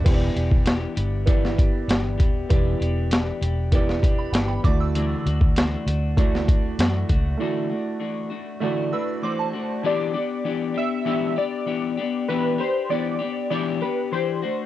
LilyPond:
<<
  \new Staff \with { instrumentName = "Synth bell" } { \time 4/4 \key e \minor \tempo 4 = 98 r1 | r2 r8. b''16 g''16 b''16 d'''16 e'''16~ | e'''4~ e'''16 r2 r8. | r2 r8 e'''8 d'''16 a''8. |
r1 | r1 | }
  \new Staff \with { instrumentName = "Synth keys" } { \time 4/4 \key e \minor r1 | r1 | r1 | r2 r8 b'8 c''4 |
d''4. e''4 d''4. | b'8 c''8 d''4 d''8 b'8 c''4 | }
  \new Staff \with { instrumentName = "Upright piano" } { \time 4/4 \key e \minor <b e' g' c'' d''>4. r8 <b e' g' d''>4. r8 | <b e' g' d''>4. r8 <b e' g' d''>4. <a e' fis' d''>8~ | <a e' fis' d''>4 r4 <a e' fis' d''>4. r8 | <a e' fis' d''>4. r8 <a e' fis' d''>4. r8 |
r1 | r1 | }
  \new Staff \with { instrumentName = "Clean electric guitar" } { \time 4/4 \key e \minor <e b d' g'>8 <b d' g'>8 <e b d' g'>8 <b d' g'>8 <e b d' g'>8 <b d' g'>8 <e b d' g'>8 <b d' g'>8 | <e b d' g'>8 <b d' g'>8 <e b d' g'>8 <b d' g'>8 <e b d' g'>8 <b d' g'>8 <e b d' g'>8 <a d' fis'>8 | <d e a d' fis'>8 <a d' fis'>8 <e a d' fis'>8 <a d' fis'>8 <d e a d' fis'>8 <a d' fis'>8 <e a d' fis'>8 <a d' fis'>8 | <d e a d' fis'>8 <a d' fis'>8 <e a d' fis'>8 <a d' fis'>8 <d e a d' fis'>8 <a d' fis'>8 <e a d' fis'>8 <a d' fis'>8 |
<e b d' g'>8 <b d' g'>8 <e b d' g'>8 <b d' g'>8 <e b d' g'>8 <b d' g'>8 <e b d' g'>8 <b d' g'>8 | <e b d' g'>8 <d' g'>8 <e b d' g'>8 <b d' g'>8 <e b d' g'>8 <b d' g'>8 <e d' g'>8 <a d' fis'>8 | }
  \new Staff \with { instrumentName = "Fingered electric bass" } { \clef bass \time 4/4 \key e \minor e,,8 e,,4 g,,4. g,,8 dis,,8 | e,,8 e,,4 e,,4. g,,8 d,8~ | d,8 d,4 d,4. fis,8 cis,8 | r1 |
r1 | r1 | }
  \new DrumStaff \with { instrumentName = "Drums" } \drummode { \time 4/4 <cymc hh bd>8 hh16 bd16 <hh sn>8 hh8 <hh bd>16 sn16 <hh bd>8 <hh sn>8 <hh bd>8 | <hh bd>8 hh8 <hh sn>8 hh8 <hh bd>16 sn16 <hh bd>8 <hh sn>8 <hh bd>8 | hh8 hh16 bd16 <hh sn>8 hh8 <hh bd>16 sn16 <hh bd>8 <hh sn>8 <hh bd>8 | r4 r4 r4 r4 |
r4 r4 r4 r4 | r4 r4 r4 r4 | }
>>